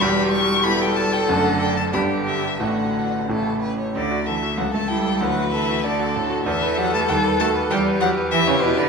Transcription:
Already playing: cello G3
0.01 grand piano E1 E2, violin G4 B5
0.32 violin C#6
0.63 grand piano B3 E4 G4, violin A4 B5
0.81 violin G5
0.96 violin A5
1.13 violin G5
1.28 grand piano F#1 F#2 A3 D4 A4, cello D3, violin F#5
1.60 violin G5
1.77 violin A5
1.92 grand piano G1 G2 B3 D4 G4, cello D3, violin G4 B5
2.26 violin E5
2.59 grand piano A1 A2 A3 D4 F#4, cello D3, violin F#4 F#5
3.28 grand piano A1 A2 A3 C#4 E4, cello C#3, violin A4
3.62 violin B4
3.79 violin C#5
3.95 grand piano D2, cello D3, violin D5
4.11 grand piano F#4
4.26 cello E3, grand piano A4, violin E5
4.42 grand piano F#4
4.57 grand piano C#2, cello F#3, violin A4 F#5
4.74 cello A3, grand piano A4, violin A5
4.88 cello G3, grand piano E4, violin G5
5.06 grand piano A4
5.21 grand piano D2, cello F#3, violin B4 F#5
5.37 grand piano F#4
5.52 cello E3, grand piano A4, violin E5
5.69 grand piano F#4
5.84 cello D3, grand piano D4, violin A4 D5
5.99 grand piano F#4
6.15 cello A2, grand piano D4, violin A4
6.30 grand piano F#4
6.46 grand piano E2, cello E3, violin A4 E5
6.62 grand piano B4
6.78 cello F#3, grand piano G4, violin F#5
6.93 cello A3, grand piano B4, violin A5
7.08 grand piano D#2, cello G3, violin G5
7.25 grand piano B4
7.40 cello A3, grand piano F#4, violin A5
7.55 grand piano B4
7.69 grand piano E2, cello G3, violin G4 G5
7.87 grand piano B4
8.01 cello F#3, grand piano G4, violin F#5
8.17 grand piano B4
8.31 cello E3, grand piano E4, violin G4 E5
8.47 cello C#3, grand piano B4, violin C#5
8.62 cello B2, grand piano E4, violin B4
8.77 cello D3, grand piano B4, violin D5

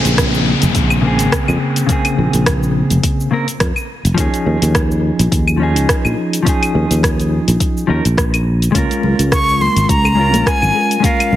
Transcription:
Already playing: clean electric guitar C#3 A#3 C4 G#4, downlifter
0.05 fretless electric bass A#1, open hi-hat, cabasa
0.18 kick, cross-stick, open hi-hat, cabasa
0.34 cabasa
0.62 fretless electric bass F1, open hi-hat, cabasa
0.75 fretless electric bass A#1, kick, open hi-hat, cabasa
0.90 cabasa, claves
1.01 clean electric guitar C#3 A#3 C4
1.07 clean electric guitar G#4
1.19 fretless electric bass G#1, open hi-hat, cabasa
1.32 kick, cross-stick, open hi-hat, cabasa
1.48 fretless electric bass F2, cabasa, claves
1.76 open hi-hat, cabasa
1.86 clean electric guitar C#3 A#3 C4, kick, open hi-hat, cabasa
1.92 clean electric guitar G#4
2.05 open hi-hat, cabasa, claves
2.18 fretless electric bass A#1
2.33 fretless electric bass A#1, open hi-hat, cabasa
2.46 kick, cross-stick, open hi-hat, cabasa
2.63 cabasa
2.90 fretless electric bass F1, open hi-hat, cabasa
3.03 kick, open hi-hat, cabasa
3.20 cabasa
3.31 clean electric guitar C#3 A#3 C4 A#4
3.48 open hi-hat, cabasa
3.60 fretless electric bass F2, kick, cross-stick, open hi-hat, cabasa
3.76 cabasa, claves
4.05 fretless electric bass F1, open hi-hat, cabasa
4.14 fretless electric bass D#2, clean electric guitar F3 C#4 D#4, kick, open hi-hat
4.19 clean electric guitar G#4, cabasa
4.34 open hi-hat, cabasa
4.46 fretless electric bass D#2
4.62 fretless electric bass D#2, open hi-hat, cabasa
4.75 kick, cross-stick, open hi-hat, cabasa
4.91 cabasa
5.19 fretless electric bass A#1, open hi-hat, cabasa
5.32 fretless electric bass D#2, kick, open hi-hat, cabasa
5.48 cabasa, claves
5.57 clean electric guitar F3 C#4
5.62 clean electric guitar D#4 G#4
5.76 fretless electric bass C#2, open hi-hat, cabasa
5.89 kick, cross-stick, open hi-hat, cabasa
6.05 fretless electric bass A#1, cabasa, claves
6.33 open hi-hat, cabasa
6.43 clean electric guitar F3 C#4, kick
6.47 clean electric guitar D#4 G#4, open hi-hat, cabasa
6.63 open hi-hat, cabasa, claves
6.75 fretless electric bass D#2
6.91 fretless electric bass D#2, open hi-hat, cabasa
7.03 kick, cross-stick, open hi-hat, cabasa
7.20 open hi-hat, cabasa
7.48 fretless electric bass A#1, open hi-hat, cabasa
7.60 kick, open hi-hat, cabasa
7.77 cabasa
7.87 fretless electric bass D#2, clean electric guitar F3 C#4 D#4 A#4
8.05 fretless electric bass A#1, open hi-hat, cabasa
8.18 kick, cross-stick, open hi-hat, cabasa
8.34 open hi-hat, cabasa, claves
8.62 open hi-hat, cabasa
8.72 fretless electric bass C#2, clean electric guitar G#3 C#4 F4, kick, open hi-hat, high conga
8.76 clean electric guitar A#4, cabasa
8.90 open hi-hat, high bongo, cabasa
9.03 fretless electric bass C#2, low conga
9.19 fretless electric bass C#2, open hi-hat, cabasa
9.32 flute C#6, kick, cross-stick, open hi-hat, high bongo, cabasa
9.49 cabasa
9.61 flute C6, high bongo, high conga, low conga
9.76 fretless electric bass G#1, open hi-hat, cabasa
9.89 fretless electric bass C#2, flute A#5, kick, open hi-hat, cabasa
10.04 high bongo, cabasa, claves
10.15 clean electric guitar G#3 C#4
10.19 clean electric guitar F4 A#4
10.34 fretless electric bass A#1, open hi-hat, high bongo, high conga, cabasa
10.46 flute G#5, kick, cross-stick, open hi-hat, cabasa
10.62 fretless electric bass G#1, low conga, cabasa, claves
10.76 high bongo
10.91 open hi-hat, cabasa
11.00 clean electric guitar G#3 C#4, kick, open hi-hat
11.04 clean electric guitar F4 A#4, flute F5, high bongo, high conga, cabasa
11.20 open hi-hat, cabasa, claves
11.32 fretless electric bass C#2, low conga

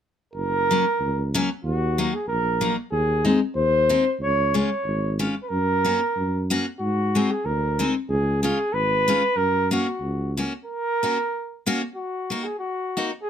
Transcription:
0.34 tuba F#1, flugelhorn A#4
0.71 steel-string acoustic guitar F#3 A#3 C#4
1.00 tuba C#2
1.34 steel-string acoustic guitar F#3 A#3 C#4
1.64 tuba D#2, flugelhorn F#4
1.98 steel-string acoustic guitar F#3 A#3 D#4
2.14 flugelhorn G#4
2.27 tuba A#1, flugelhorn A#4
2.61 steel-string acoustic guitar F#3 A#3 D#4
2.91 tuba D#2, flugelhorn G#4
3.25 steel-string acoustic guitar G#3 C4 D#4, flugelhorn G#4
3.55 tuba D#2, flugelhorn C5
3.89 steel-string acoustic guitar G#3 C4 D#4
4.19 tuba C#2, flugelhorn C#5
4.54 steel-string acoustic guitar G#3 C#4 F4, flugelhorn C#5
4.85 tuba G#1
5.19 steel-string acoustic guitar G#3 C#4 F4
5.43 flugelhorn B4
5.49 tuba F#2, flugelhorn A#4
5.85 steel-string acoustic guitar A#3 C#4 F#4
6.16 tuba F#2
6.50 steel-string acoustic guitar A#3 C#4 F#4
6.80 tuba G#2, flugelhorn F#4
7.15 steel-string acoustic guitar G#3 C4 D#4
7.31 flugelhorn G#4
7.45 tuba D2, flugelhorn A#4
7.79 steel-string acoustic guitar G#3 C4 D#4
8.09 tuba C#2, flugelhorn G#4
8.43 steel-string acoustic guitar G#3 C#4 F4, flugelhorn G#4
8.73 tuba G#1, flugelhorn B4
9.08 steel-string acoustic guitar G#3 C#4 F4
9.36 tuba F#2, flugelhorn A#4
9.71 steel-string acoustic guitar A#3 C#4 F#4, flugelhorn F#4
10.01 tuba C#2
10.37 steel-string acoustic guitar A#3 C#4 F#4
10.65 flugelhorn A#4
11.03 steel-string acoustic guitar A#3 C#4 F#4
11.66 steel-string acoustic guitar A#3 C#4 F#4
11.96 flugelhorn F#4
12.30 steel-string acoustic guitar A#3 D#4 F#4
12.44 flugelhorn G#4
12.59 flugelhorn F#4
12.97 steel-string acoustic guitar A#3 D#4 F#4
13.23 flugelhorn G#4

